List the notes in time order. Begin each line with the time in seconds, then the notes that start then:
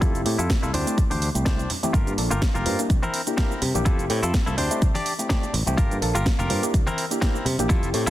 0.01 F2 E4 F4 A4, kick, closed hi-hat, shaker
0.15 F1, closed hi-hat, shaker
0.25 A2 A3 C4 E4 G4, open hi-hat
0.38 F2 E4 F4 A4, closed hi-hat, shaker
0.50 kick, snare, closed hi-hat, shaker
0.63 C2 E4 F4 A4, closed hi-hat, low conga, shaker
0.73 D2 A3 C4 D4 E4 G4 C5, open hi-hat, low conga, shaker
0.87 A3 C4 E4 G4, closed hi-hat, shaker
0.98 kick, closed hi-hat, shaker
1.10 D2 D4 G4 C5, open hi-hat, high conga, shaker
1.22 open hi-hat
1.35 C2 A3 C4 E4 G4, closed hi-hat, shaker
1.45 A3 C4 D4 E4 G4 C5, kick, snare, closed hi-hat, shaker
1.59 closed hi-hat, shaker
1.70 open hi-hat, low conga, shaker
1.83 A3 C4 E4 G4, closed hi-hat, high conga, shaker
1.93 G1 F4 G4 A#4, kick, closed hi-hat, shaker
2.07 G2, closed hi-hat, shaker
2.17 A#1 A#3 D4 F4 A4, open hi-hat
2.31 G1 F4 G4 A#4, closed hi-hat, shaker
2.42 kick, snare, closed hi-hat, shaker
2.55 F1 F4 G4 A#4, closed hi-hat, low conga, shaker
2.65 G2 A#3 D4 F4 C5, open hi-hat, low conga, shaker
2.79 A#3 D4 E4 G4, closed hi-hat, shaker
2.90 C2, kick, closed hi-hat, shaker
3.03 C4 E4 A#4, closed hi-hat, high conga, shaker
3.14 open hi-hat
3.27 A#3 D4 E4 G4, closed hi-hat, shaker
3.37 A#3 C4 D4 E4 G4 A#4, kick, snare, closed hi-hat, shaker
3.51 shaker
3.62 C3, open hi-hat, low conga, shaker
3.75 A#1 A#3 D4 E4 G4, closed hi-hat, high conga, shaker
3.85 F2 E4 F4 A4, kick, closed hi-hat, shaker
3.99 F1, closed hi-hat, shaker
4.10 A2 A3 C4 E4 G4, open hi-hat
4.23 F2 E4 F4 A4, closed hi-hat, shaker
4.34 kick, snare, closed hi-hat, shaker
4.46 C2 E4 F4 A4, closed hi-hat, low conga, shaker
4.57 D2 A3 C4 D4 E4 G4 C5, open hi-hat, low conga, shaker
4.71 A3 C4 E4 G4, closed hi-hat, shaker
4.82 C2, kick, closed hi-hat, shaker
4.95 D4 G4 D5, open hi-hat, high conga, shaker
5.06 open hi-hat, shaker
5.19 A3 C4 E4 G4, closed hi-hat, shaker
5.29 A3 C4 D4 E4 G4 D5, kick, snare, closed hi-hat, shaker
5.43 closed hi-hat, shaker
5.53 A1, open hi-hat, low conga, shaker
5.66 C2 A3 C4 E4 G4, closed hi-hat, high conga, shaker
5.77 A#3 F4 G4 A#4, kick, closed hi-hat, shaker
5.91 G2, closed hi-hat, shaker
6.01 A#1 A#3 D4 F4 A4, open hi-hat
6.15 G1 F4 G4 A#4, closed hi-hat, shaker
6.26 kick, snare, closed hi-hat, shaker
6.39 F1 F4 G4 A#4, closed hi-hat, low conga, shaker
6.50 G2 A#3 D4 F4 C5, open hi-hat, low conga, shaker
6.63 A#3 D4 E4 G4, closed hi-hat, shaker
6.74 C2, kick, closed hi-hat, shaker
6.87 C4 E4 A#4, closed hi-hat, high conga, shaker
6.98 open hi-hat, shaker
7.11 A#3 D4 E4 G4, closed hi-hat, shaker
7.21 A#3 C4 D4 E4 G4 A#4, kick, snare, closed hi-hat, shaker
7.36 shaker
7.45 C3, open hi-hat, low conga, shaker
7.59 A#1 A#3 D4 E4 G4, closed hi-hat, high conga, shaker
7.69 F2 E4 F4 A4, kick, closed hi-hat, shaker
7.83 F1, closed hi-hat, shaker
7.94 A2 A3 C4 E4 G4, open hi-hat
8.06 F2 E4